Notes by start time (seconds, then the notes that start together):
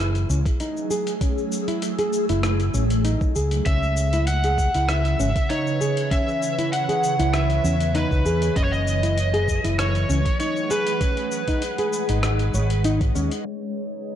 Already playing: F#1 E3 F#3 A3 E4 G#4 B4
0.15 closed hi-hat, cabasa
0.30 C#2 C#4, cabasa
0.40 E6
0.46 kick, closed hi-hat, cabasa
0.60 D#4, closed hi-hat, cabasa
0.77 cabasa
0.91 G#4, cabasa
1.07 closed hi-hat, cabasa
1.21 C#4, kick, closed hi-hat, cabasa
1.38 cabasa
1.52 cabasa
1.68 E4, closed hi-hat, cabasa
1.82 closed hi-hat, cabasa
1.99 G#4, closed hi-hat, cabasa
2.13 cabasa
2.29 F#1 E4, closed hi-hat, cabasa
2.43 cross-stick, closed hi-hat, cabasa
2.60 closed hi-hat, cabasa
2.74 A1 C#4, cabasa
2.90 closed hi-hat, cabasa
3.05 D#4, closed hi-hat, cabasa
3.21 kick, cabasa
3.36 C#2 G#4, cabasa
3.51 closed hi-hat, cabasa
3.66 C#2 C#3 C#4 E5, kick, closed hi-hat, cabasa
3.83 cabasa
3.97 cabasa
4.13 E4, closed hi-hat, cabasa
4.27 F#5, closed hi-hat, cabasa
4.37 E3
4.42 G#4 B4, closed hi-hat, cabasa
4.58 kick, cabasa
4.74 C#2 E4, closed hi-hat, cabasa
4.87 C#5 E5, cross-stick, closed hi-hat, cabasa
5.05 closed hi-hat, cabasa
5.20 G#1 C#4, cabasa
5.36 kick, closed hi-hat, cabasa
5.50 D#4 C#5, closed hi-hat, cabasa
5.67 cabasa
5.81 G#4, cabasa
5.97 closed hi-hat, cabasa
6.11 C#4 E5, kick, closed hi-hat, cabasa
6.28 cabasa
6.43 cabasa
6.59 E4, closed hi-hat, cabasa
6.73 F#5, closed hi-hat, cabasa
6.89 G#4, closed hi-hat, cabasa
7.04 cabasa
7.19 C#2 E4, closed hi-hat, cabasa
7.34 E5, cross-stick, closed hi-hat, cabasa
7.50 closed hi-hat, cabasa
7.64 E2 C#4, cabasa
7.80 closed hi-hat, cabasa
7.95 D#4 B4, closed hi-hat, cabasa
8.11 C#2, kick, cabasa
8.25 E2 G#4, cabasa
8.42 closed hi-hat, cabasa
8.56 F#1 F#3 C#4 D#5, kick, closed hi-hat, cabasa
8.64 C#5
8.72 D#5, cabasa
8.86 A3, cabasa
9.03 E4, closed hi-hat, cabasa
9.18 closed hi-hat, cabasa
9.34 G#4, closed hi-hat, cabasa
9.48 kick, cabasa
9.52 G#4
9.64 F#1 E4 F#5, closed hi-hat, cabasa
9.79 C#5, cross-stick, closed hi-hat, cabasa
9.95 closed hi-hat, cabasa
10.09 C#2 C#4, cabasa
10.25 kick, closed hi-hat, cabasa
10.40 D#4 C#5, closed hi-hat, cabasa
10.57 cabasa
10.71 G#4 B4, cabasa
10.87 closed hi-hat, cabasa
11.01 G#3 C#4, kick, closed hi-hat, cabasa
11.17 closed hi-hat, cabasa
11.32 cabasa
11.36 D#5
11.48 D#4, kick, closed hi-hat, cabasa
11.62 closed hi-hat, cabasa
11.78 G#4, closed hi-hat, cabasa
11.93 cabasa
12.01 B4
12.09 G#1 D#4, closed hi-hat, cabasa
12.23 cross-stick, closed hi-hat, cabasa
12.39 closed hi-hat, cabasa
12.54 G#1 C#5, cabasa
12.70 closed hi-hat, cabasa
12.84 D#4, closed hi-hat, cabasa
13.01 kick, closed hi-hat, cabasa
13.15 D#2 C#4, cabasa
13.31 closed hi-hat, cabasa
13.46 C#3 D#4 C#5 D#6
13.54 C#4